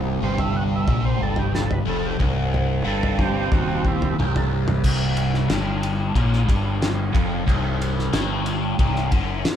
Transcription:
Already playing: C1 C2 C3
0.21 G1 G2 C5
0.38 E5, floor tom
0.56 F#5
0.76 E5
0.88 A#1 A#2, kick, floor tom
1.05 C5
1.20 G1 G2 A4
1.36 G4, floor tom
1.55 A4, snare
1.71 B4, floor tom
1.85 F1 F2
1.89 A4
2.06 G4
2.19 C1 C2, kick, floor tom
2.54 floor tom
2.84 G1 G2 A4
3.03 floor tom
3.19 G3 C4, kick, mid tom
3.23 G4
3.51 D#1 D#2 F#4, kick, floor tom
3.85 E4, kick
4.02 floor tom
4.19 C1 C2 G4, mid tom
4.36 A4, floor tom, mid tom
4.68 mid tom
4.84 C1 C2, kick, crash
5.17 ride
5.34 snare
5.50 G1 G2, snare, ride
5.83 ride
6.15 A#1 A#2, kick, ride
6.33 snare
6.47 G1 G2, kick, ride
6.82 snare, ride
7.13 F1 F2, kick, ride
7.46 C1 C2, kick, ride
7.82 ride
7.99 snare
8.12 G1 G2, snare, ride
8.46 ride
8.78 C1 C2, kick, ride
8.96 snare
9.12 F#1 F#2, kick, ride
9.45 snare, ride

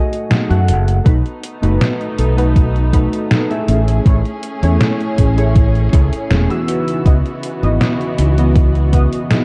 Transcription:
Already playing: A3 F#4 G#4 D#5
0.12 muted clean electric guitar stroke, closed hi-hat
0.30 A3 D#4 G#4 F#5, snare, closed hi-hat
0.49 F#2 A3 F#4 F#5, closed hi-hat
0.68 F#1 A5, closed hi-hat
0.87 muted clean electric guitar stroke, closed hi-hat
1.04 B1 A3 B3 D#4 F#4 B4, muted clean electric guitar stroke, kick, closed hi-hat
1.25 muted clean electric guitar stroke, closed hi-hat
1.43 closed hi-hat
1.62 F#1 A3 B3 D#4 F#4 B4, closed hi-hat
1.81 snare, closed hi-hat
2.01 closed hi-hat
2.18 B1 B3 D#4 A4, closed hi-hat
2.37 A3 D#4 F#4 B4, closed hi-hat
2.56 kick, closed hi-hat
2.76 closed hi-hat
2.92 A3 D#4 F#4 B4, muted clean electric guitar stroke, kick, closed hi-hat
3.12 muted clean electric guitar stroke, closed hi-hat
3.31 B3 D#4 A4, snare, closed hi-hat
3.50 A3 E4 G#4 E5, closed hi-hat
3.68 A1 A3 C#4 G#4, closed hi-hat
3.88 closed hi-hat
4.05 A1 A3 E4 G#4 C#5, kick, closed hi-hat
4.25 muted clean electric guitar stroke, closed hi-hat
4.43 closed hi-hat
4.62 E2 A3 C#4 E4 G#4 C#5, closed hi-hat
4.81 snare, closed hi-hat
5.00 closed hi-hat
5.18 A1 A3 C#4 G#4, kick, closed hi-hat
5.37 A3 E4 G#4 C#5, closed hi-hat
5.55 muted clean electric guitar stroke, kick, closed hi-hat
5.75 closed hi-hat
5.92 C#2 A3 E4 G#4 C#5, muted clean electric guitar stroke, kick, closed hi-hat
6.12 muted clean electric guitar stroke, muted fingered electric bass stroke, closed hi-hat
6.30 E1 A3 C#4 G#4, snare, closed hi-hat
6.49 E3 B3 F#4 E6, closed hi-hat
6.68 C#3 E3 B3 D#4 E4 F#4, closed hi-hat
6.88 closed hi-hat
7.05 C#2 B3 E4 F#4 D#5, kick, closed hi-hat
7.25 muted clean electric guitar stroke, closed hi-hat
7.43 closed hi-hat
7.62 G#1 E3 B3 D#4 E4 F#4 D#5, closed hi-hat
7.81 snare, closed hi-hat
8.01 closed hi-hat
8.18 C#2 B3 D#4 E4 F#4, closed hi-hat
8.38 E3 B3 F#4 D#5, closed hi-hat
8.55 muted clean electric guitar stroke, kick, closed hi-hat
8.75 closed hi-hat
8.92 E3 B3 F#4 D#5, muted clean electric guitar stroke, kick, closed hi-hat
9.12 muted clean electric guitar stroke, closed hi-hat
9.30 B3 D#4 E4 G#4, snare, closed hi-hat

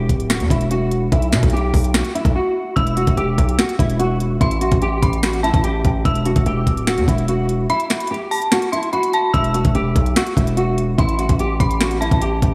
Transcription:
Already playing: G4
0.09 D1, kick, closed hi-hat
0.20 closed hi-hat
0.30 F#4, finger snap, snare, closed hi-hat
0.40 E2, closed hi-hat
0.50 E1 E4, kick, closed hi-hat
0.61 closed hi-hat
0.71 F#4, closed hi-hat
0.91 closed hi-hat
1.12 B1 E4, kick, closed hi-hat
1.22 closed hi-hat
1.32 B2 F#4, finger snap, snare, closed hi-hat
1.43 B1, kick, closed hi-hat
1.50 G4, closed hi-hat
1.57 closed hi-hat
1.74 B1, kick, open hi-hat
1.84 closed hi-hat
1.94 F#4, finger snap, snare, closed hi-hat
2.05 closed hi-hat
2.15 E4, closed hi-hat
2.25 B1, kick, closed hi-hat
2.35 F#4
2.76 E1 E4 E6, kick, closed hi-hat
2.87 closed hi-hat
2.97 F#4, closed hi-hat
3.07 E1, kick, closed hi-hat
3.17 E1 G4, closed hi-hat
3.38 B1, kick, closed hi-hat
3.49 closed hi-hat
3.59 F#4, finger snap, snare, closed hi-hat
3.69 closed hi-hat
3.79 E1 E4, kick, closed hi-hat
3.90 closed hi-hat
3.99 F#4, closed hi-hat
4.20 closed hi-hat
4.40 A1 E4 C6, kick, closed hi-hat
4.51 closed hi-hat
4.61 F#4, closed hi-hat
4.72 A1, kick, closed hi-hat
4.82 G4, closed hi-hat
5.02 A1 B5, kick, closed hi-hat
5.13 closed hi-hat
5.23 F#4, finger snap, snare, closed hi-hat
5.33 closed hi-hat
5.43 E4 A5, closed hi-hat
5.54 A1, kick, closed hi-hat
5.64 G4, closed hi-hat
5.85 A1, kick, closed hi-hat
6.05 E1 E4 E6, kick, closed hi-hat
6.15 closed hi-hat
6.26 F#4, closed hi-hat
6.36 E1, kick, closed hi-hat
6.46 E1 G4, closed hi-hat
6.67 D1, kick, closed hi-hat
6.77 closed hi-hat
6.87 F#4, finger snap, snare, closed hi-hat
6.98 E2, closed hi-hat
7.08 E1 E4, kick, closed hi-hat
7.18 closed hi-hat
7.28 F#4, closed hi-hat
7.49 closed hi-hat
7.69 E4 B5, closed hi-hat
7.80 closed hi-hat
7.90 F#4, finger snap, snare, closed hi-hat
8.00 closed hi-hat
8.07 G4, closed hi-hat
8.14 closed hi-hat
8.31 A5, open hi-hat
8.42 closed hi-hat
8.52 F#4, finger snap, snare, closed hi-hat
8.62 closed hi-hat
8.72 E4 C6, closed hi-hat
8.83 closed hi-hat
8.93 F#4 B5, closed hi-hat
9.03 closed hi-hat
9.13 A5, closed hi-hat
9.34 E1 E4 E6, kick, closed hi-hat
9.44 closed hi-hat
9.54 F#4, closed hi-hat
9.65 E1, kick, closed hi-hat
9.75 E1 G4, closed hi-hat
9.96 B1, kick, closed hi-hat
10.06 closed hi-hat
10.16 F#4, finger snap, snare, closed hi-hat
10.27 closed hi-hat
10.37 E1 E4, kick, closed hi-hat
10.47 closed hi-hat
10.57 F#4, closed hi-hat
10.78 closed hi-hat
10.98 A1 E4 C6, kick, closed hi-hat
11.09 closed hi-hat
11.19 F#4, closed hi-hat
11.29 A1, kick, closed hi-hat
11.39 G4, closed hi-hat
11.60 A1 B5, kick, closed hi-hat
11.71 closed hi-hat
11.81 F#4, finger snap, snare, closed hi-hat
11.91 closed hi-hat
12.01 E4 A5, closed hi-hat
12.11 A1, kick, closed hi-hat
12.22 G4, closed hi-hat
12.42 A1, kick, closed hi-hat

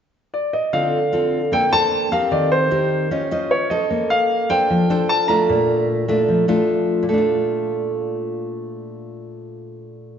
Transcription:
0.34 D5
0.53 D#5
0.73 D3 C4 F4 A4 F5
1.13 C4 F4 A4
1.52 A#3 D4 A4 C5 G5
1.72 D4 A4 C5 A5
2.12 C4 G4 A#4 F5
2.31 D#3 D5
2.52 C5
2.71 C4 G4 A#4
3.11 C#4 F4 C5 D#5
3.31 F4 C5 D#5
3.51 C#5
3.70 A4 C5 D#5
3.90 A#3
4.10 F5
4.49 D4 A4 C5 G5
4.70 F3
4.90 D4 A4 C5
5.09 A5
5.28 A3 D4 F4 A#5
5.49 A#2
6.08 A3 D4 F4
6.28 F3
6.48 A3 D4 F4
7.03 A#2
7.09 A3
7.13 D4
7.18 F4

